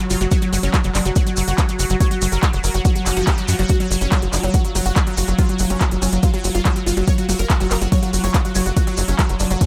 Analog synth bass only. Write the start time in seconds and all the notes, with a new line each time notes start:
0.10 F#1
0.21 F#1
0.53 F#1
0.63 F#1
0.84 F#1
0.95 F#1
1.05 F#1
1.37 F#1
1.48 F#1
1.79 F#1
1.90 F#1
2.22 F#1
2.32 F#1
2.53 F#1
2.64 F#1
2.74 F#1
3.06 F#1
3.17 F#1
3.48 F#2
3.59 F#1
3.91 F#1
4.01 F#1
4.22 F#1
4.33 F#1
4.43 F#1
4.75 F#1
4.86 F#1
5.17 F#1
5.28 F#1
5.60 F#1
5.70 F#1
5.91 F#1
6.02 F#1
6.12 F#1
6.44 F#1
6.55 F#1
6.86 F#1
6.97 F#1
7.29 F#1
7.39 F#1
7.60 F#1
7.71 F#1
7.82 F#1
8.13 F#1
8.24 F#1
8.55 F#1
8.66 F#1
8.98 F#1
9.08 F#1
9.29 F#1
9.40 F#1
9.51 F#1